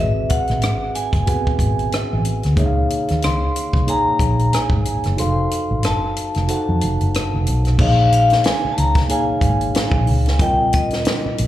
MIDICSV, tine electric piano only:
0, 0, Header, 1, 2, 480
1, 0, Start_track
1, 0, Tempo, 652174
1, 1891, Time_signature, 4, 2, 24, 8
1, 8444, End_track
2, 0, Start_track
2, 0, Title_t, "Tine electric piano"
2, 0, Program_c, 0, 4
2, 0, Note_on_c, 0, 60, 68
2, 0, Note_on_c, 0, 66, 62
2, 0, Note_on_c, 0, 68, 60
2, 0, Note_on_c, 0, 71, 59
2, 0, Note_on_c, 0, 76, 73
2, 130, Control_c, 0, 64, 127
2, 791, Note_off_c, 0, 60, 0
2, 793, Note_off_c, 0, 66, 0
2, 796, Note_off_c, 0, 68, 0
2, 800, Note_off_c, 0, 71, 0
2, 803, Note_off_c, 0, 76, 0
2, 926, Note_on_c, 0, 59, 51
2, 931, Note_on_c, 0, 66, 60
2, 938, Note_on_c, 0, 68, 62
2, 943, Note_on_c, 0, 71, 61
2, 950, Note_on_c, 0, 78, 70
2, 973, Note_on_c, 0, 60, 64
2, 982, Note_off_c, 0, 59, 0
2, 1753, Note_off_c, 0, 66, 0
2, 1757, Note_off_c, 0, 68, 0
2, 1759, Note_off_c, 0, 71, 0
2, 1763, Note_off_c, 0, 78, 0
2, 1774, Note_off_c, 0, 60, 0
2, 1882, Note_on_c, 0, 58, 84
2, 1888, Note_on_c, 0, 63, 78
2, 1895, Note_on_c, 0, 68, 78
2, 1900, Control_c, 0, 64, 0
2, 1900, Note_on_c, 0, 73, 74
2, 1908, Note_on_c, 0, 76, 74
2, 1953, Note_off_c, 0, 76, 0
2, 1957, Note_on_c, 0, 77, 89
2, 2024, Control_c, 0, 64, 127
2, 2709, Note_off_c, 0, 58, 0
2, 2712, Note_off_c, 0, 63, 0
2, 2715, Note_off_c, 0, 68, 0
2, 2718, Note_off_c, 0, 73, 0
2, 2746, Note_off_c, 0, 77, 0
2, 2844, Note_on_c, 0, 58, 65
2, 2849, Note_on_c, 0, 63, 66
2, 2856, Note_on_c, 0, 68, 61
2, 2861, Note_on_c, 0, 73, 62
2, 2868, Note_on_c, 0, 80, 78
2, 3670, Note_off_c, 0, 58, 0
2, 3672, Note_off_c, 0, 63, 0
2, 3676, Note_off_c, 0, 68, 0
2, 3679, Note_off_c, 0, 73, 0
2, 3682, Note_off_c, 0, 80, 0
2, 3805, Note_on_c, 0, 63, 74
2, 3809, Note_on_c, 0, 66, 65
2, 3817, Note_on_c, 0, 69, 66
2, 3819, Control_c, 0, 64, 0
2, 3822, Note_on_c, 0, 72, 66
2, 3830, Note_on_c, 0, 77, 77
2, 3941, Control_c, 0, 64, 127
2, 4630, Note_off_c, 0, 63, 0
2, 4632, Note_off_c, 0, 66, 0
2, 4636, Note_off_c, 0, 69, 0
2, 4639, Note_off_c, 0, 72, 0
2, 4643, Note_off_c, 0, 77, 0
2, 4766, Note_on_c, 0, 63, 68
2, 4770, Note_on_c, 0, 66, 68
2, 4778, Note_on_c, 0, 69, 64
2, 4784, Note_on_c, 0, 72, 64
2, 4790, Note_on_c, 0, 78, 73
2, 5591, Note_off_c, 0, 63, 0
2, 5593, Note_off_c, 0, 66, 0
2, 5597, Note_off_c, 0, 69, 0
2, 5600, Note_off_c, 0, 72, 0
2, 5603, Note_off_c, 0, 78, 0
2, 5723, Note_on_c, 0, 58, 71
2, 5730, Note_on_c, 0, 63, 70
2, 5738, Note_on_c, 0, 68, 67
2, 5739, Control_c, 0, 64, 0
2, 5743, Note_on_c, 0, 73, 70
2, 5750, Note_on_c, 0, 75, 66
2, 5795, Note_off_c, 0, 75, 0
2, 5799, Note_on_c, 0, 77, 80
2, 5891, Control_c, 0, 64, 127
2, 6549, Note_off_c, 0, 58, 0
2, 6553, Note_off_c, 0, 63, 0
2, 6557, Note_off_c, 0, 68, 0
2, 6559, Note_off_c, 0, 73, 0
2, 6587, Note_off_c, 0, 77, 0
2, 6684, Note_on_c, 0, 58, 74
2, 6691, Note_on_c, 0, 63, 69
2, 6696, Note_on_c, 0, 68, 68
2, 6703, Note_on_c, 0, 73, 67
2, 6709, Note_on_c, 0, 77, 85
2, 7510, Note_off_c, 0, 58, 0
2, 7513, Note_off_c, 0, 63, 0
2, 7516, Note_off_c, 0, 68, 0
2, 7519, Note_off_c, 0, 73, 0
2, 7523, Note_off_c, 0, 77, 0
2, 7644, Note_on_c, 0, 55, 77
2, 7651, Note_on_c, 0, 60, 67
2, 7657, Note_on_c, 0, 65, 69
2, 7659, Control_c, 0, 64, 0
2, 7663, Note_on_c, 0, 70, 68
2, 7668, Note_on_c, 0, 75, 82
2, 7808, Control_c, 0, 64, 127
2, 8444, Note_off_c, 0, 55, 0
2, 8444, Note_off_c, 0, 60, 0
2, 8444, Note_off_c, 0, 65, 0
2, 8444, Note_off_c, 0, 70, 0
2, 8444, Note_off_c, 0, 75, 0
2, 8444, End_track
0, 0, End_of_file